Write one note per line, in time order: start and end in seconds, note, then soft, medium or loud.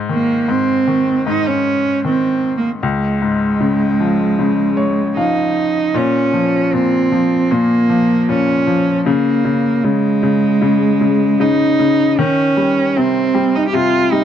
0.00 0.47 G#2 medium
0.09 0.86 D#3 soft
0.09 0.51 A#3 medium
0.48 1.25 G#2 soft
0.48 1.27 C4 medium
0.88 2.03 D#3 soft
1.26 2.79 G#2 soft
1.26 1.48 D#4 medium
1.47 2.05 C#4 medium
2.05 2.81 D#3 soft
2.05 2.54 C4 medium
2.57 2.69 A#3 medium
2.83 5.91 C#2 medium
2.83 5.13 G#3 medium
3.22 4.74 G#2 soft
3.61 4.37 C#3 soft
4.00 5.16 F3 soft
4.39 5.91 C#3 soft
4.77 5.14 C#5 medium
5.17 5.93 F3 soft
5.17 5.98 D#4 medium
5.17 5.91 F5 soft
5.94 6.71 A#2 medium
5.94 6.75 C#4 medium
6.34 7.11 F3 soft
6.73 7.49 A#2 soft
6.73 7.53 C4 medium
7.12 7.88 F3 soft
7.51 8.27 A#2 soft
7.51 8.30 A#3 medium
7.90 8.66 F3 soft
8.29 9.04 A#2 soft
8.29 9.06 C#4 medium
8.67 9.05 F3 soft
9.06 9.43 C#3 medium
9.06 9.86 A#3 medium
9.45 9.83 C#3 soft
9.84 10.21 C#3 soft
9.84 11.42 G#3 medium
10.23 10.60 C#3 soft
10.62 11.00 C#3 medium
11.01 11.38 C#3 soft
11.40 11.78 C#3 soft
11.40 12.20 D#4 medium
11.79 12.17 C#3 soft
12.19 14.24 D#3 medium
12.19 12.98 C#4 medium
12.57 13.33 G3 soft
12.96 13.72 C3 soft
12.96 13.57 C4 medium
13.35 14.11 G3 medium
13.55 13.67 D#4 medium
13.68 13.76 G4 medium
13.73 14.24 C3 medium
13.73 14.14 F4 medium
14.12 14.24 G3 medium
14.12 14.24 D#4 medium